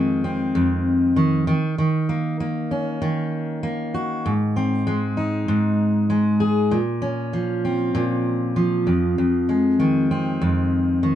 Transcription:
steel-string acoustic guitar
Already playing: F2 D#3 G#3 C4
0.24 C4
0.55 F2
1.16 D#3
1.47 D#3
1.78 D#3
2.09 A#3
2.40 A#3
2.71 C#4
3.02 D#3
3.63 A#3
3.94 F#4
4.26 G#2
4.56 C4
4.87 G#3
5.17 D#4
5.48 G#2
6.10 G#3
6.40 G#4
6.71 A#2
7.02 C#4
7.33 F3
7.65 C4
7.95 A#2
8.56 F3
8.87 F2
9.18 F2
9.49 G#3
9.80 D#3
10.11 C4
10.41 F2
11.03 D#3

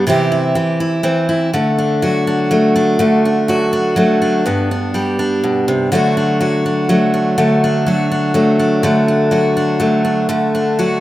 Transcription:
steel-string acoustic guitar
0.07 C3 E3 C4 E4 G4
0.32 E4
0.55 E3 G4
0.80 E4
1.03 E3 C4
1.29 E4
1.53 D3 A3
1.78 D4
2.02 F#3 F#4
2.27 D4
2.51 F#3 A3
2.76 D4
2.99 D3 A3
3.25 D4
3.48 F#3 F#4
3.73 D4
3.96 F#3 A3
4.22 D4
4.46 G2 B3
4.71 D4
4.94 G3 G4
5.19 D4
5.44 B2
5.68 C3
5.92 D3 F#3 A3 D4 F#4
6.17 D4
6.40 F#3 F#4
6.66 D4
6.89 F#3 A3
7.14 D4
7.38 D3 A3
7.64 D4
7.86 F#3 F#4
8.11 D4
8.34 F#3 A3
8.59 D4
8.83 D3 A3
9.08 D4
9.31 F#3 F#4
9.57 D4
9.80 F#3 A3
10.05 D4
10.29 D3 A3
10.55 D4
10.79 F#3 F#4

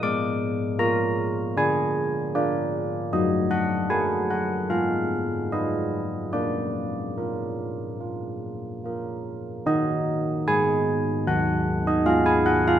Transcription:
church bells
0.03 G#3 D6
0.79 F4 A#4 A#5
1.57 D4 G#5
2.35 F4 A#4 D5
3.13 F#3 D#5
3.51 F#5
3.90 F#4 A#4 G#5
4.30 F#5
4.70 G#3 F5
5.52 F4 B4 D#5
6.33 A#3 D5
7.18 F4 A#4
8.00 F4
8.84 F4 A#4
9.66 D#4 A#4 D#5
10.48 G#3 G#5
11.27 D#3 F#5
11.87 D#5
12.06 G#3 F5
12.26 G#5
12.46 F#5
12.68 F5

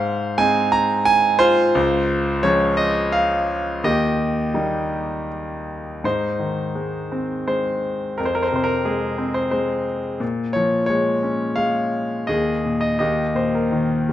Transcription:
grand piano
Already playing: G#2 C5 F5
0.38 G#3 C4 D#4 G#5
0.72 A#5
1.05 G#5
1.39 F4 C5
1.75 C#2
2.43 F3 G#3 C#4 C#5
2.77 D#5
3.12 F5
3.84 D#2 G4 D#5
4.54 G3 A#3 D#4
6.04 G#2 D#4 C5
6.39 D#3
6.75 G#3
7.12 C4
7.47 G#3 C5
8.18 F2 A#4
8.25 C5
8.35 A#4
8.42 C5
8.48 C3 A#4
8.56 C5
8.64 A#4
8.85 G#3 G#4
9.18 C4
9.34 C5
9.51 G#3 C5
10.20 A#2
10.53 F3 C#5
10.86 G#3 C#5
11.23 C#4
11.56 G#3 F5
12.27 D#2 G#4 D#5
12.66 A#2
12.81 D#5
12.99 D#2 G4 D#5
13.35 A#2 C5
13.55 A#4
13.72 D#3
14.09 G3

